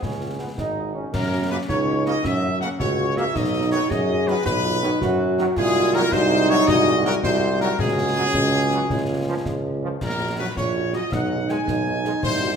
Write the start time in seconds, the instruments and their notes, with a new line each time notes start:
Already playing: euphonium G#2, trumpet section G#4
0.02 tuba C#2, trombone section C#4, concert bass drum, snare
0.21 french horn section G#3 C#4 F4
0.39 french horn section G#3 C#4 F4, trombone section B3
0.57 tuba G#1, trombone section D#4, concert bass drum, snare
0.77 french horn section G#3 C#4 F4
0.94 french horn section G#3 C#4 F4, trombone section C#4
1.12 tuba F#2, euphonium C#4, trumpet section A#4, concert bass drum, snare, crash
1.31 french horn section A#3 C#4 F#4
1.50 trombone section C#3 A#3, french horn section A#3 C#4 F#4, trumpet section B4
1.69 tuba C#2, euphonium D#4, trumpet section C#5, concert bass drum, snare
1.87 french horn section A#3 C#4 F#4
2.06 trombone section C#3 A#3, french horn section A#3 C#4 F#4, trumpet section D#5, snare
2.24 tuba F#2, euphonium C#4, trumpet section E5, concert bass drum, snare
2.42 french horn section A#3 C#4 F#4
2.61 trombone section C#3 A#3, french horn section A#3 C#4 F#4, trumpet section F#5, snare
2.79 tuba C#2, euphonium F#4, trumpet section C#5, concert bass drum, snare
2.98 french horn section A#3 C#4 F#4
3.16 trombone section C#3 A#3, french horn section A#3 C#4 F#4, trumpet section E5, snare
3.35 tuba B1, euphonium D#4, trumpet section D#5, concert bass drum, snare, crash
3.53 french horn section F#3 D#4 F#4
3.71 trombone section D#3 F#3, french horn section F#3 D#4 F#4, trumpet section C#5
3.90 tuba F#2, euphonium G#4, trumpet section D#5, concert bass drum, snare
4.08 french horn section F#3 D#4 F#4
4.27 trombone section D#3 F#3, french horn section F#3 D#4 F#4, trumpet section B4, snare
4.45 tuba B1, euphonium F#4, trumpet section B4, concert bass drum, snare
4.64 french horn section F#3 D#4 F#4, euphonium F4
4.82 trombone section D#3 F#3, french horn section F#3 D#4 F#4, euphonium D#4, snare
5.01 tuba F#2, euphonium F#4, concert bass drum, snare
5.20 french horn section F#3 D#4 F#4
5.38 trombone section D#3 F#3, french horn section F#3 D#4 F#4, snare
5.56 tuba C2, french horn section G#3 D#4 F#4, euphonium F4, trumpet section G#4, concert bass drum, snare, crash
5.94 trombone section D#3 F#3, trumpet section A#4
6.12 tuba C2, french horn section G#3 D#4 F#4, euphonium D#4, trumpet section C5, concert bass drum, snare
6.49 trombone section D#3 F#3, trumpet section C#5, snare
6.68 tuba C2, french horn section G#3 D#4 F#4, trumpet section D#5, concert bass drum, snare
7.04 trombone section D#3 F#3, trumpet section A#4, snare
7.23 tuba C2, french horn section G#3 D#4 F#4, trumpet section C5, concert bass drum, snare
7.60 trombone section D#3 F#3, trumpet section A#4, snare
7.78 tuba C#2, french horn section G#3 C#4 F#4, euphonium C#4, trumpet section G#4, concert bass drum, snare, crash
8.16 trombone section C#3 F#3
8.34 tuba C#2, concert bass drum, snare
8.71 trombone section C#3 F#3, snare
8.89 tuba C#2, french horn section G#3 C#4 F4, concert bass drum, snare
9.27 trombone section C#3 F3
9.45 tuba C#2, concert bass drum, snare
9.82 trombone section C#3 F3
10.00 tuba A#1, trumpet section A#4, concert bass drum, snare, crash
10.19 french horn section C#4 F#4
10.38 trombone section C#3 F#3, french horn section C#4 F#4, trumpet section B4
10.56 tuba A#1, euphonium F4, trumpet section C#5, concert bass drum, snare
10.75 french horn section C#4 F#4
10.93 trombone section C#3 F#3, french horn section C#4 F#4, trumpet section D#5, snare
11.11 tuba B1, euphonium D#4, trumpet section F#5, concert bass drum, snare
11.30 french horn section G#3 D#4 G#4
11.49 trombone section D#3 G#3, french horn section G#3 D#4 G#4, trumpet section G#5, snare
11.67 tuba B1, concert bass drum, snare
11.86 french horn section G#3 D#4 G#4
12.04 trombone section D#3 G#3, french horn section G#3 D#4 G#4, snare
12.22 tuba C2, trumpet section C5, concert bass drum, snare, crash
12.41 french horn section G#3 D#4 F#4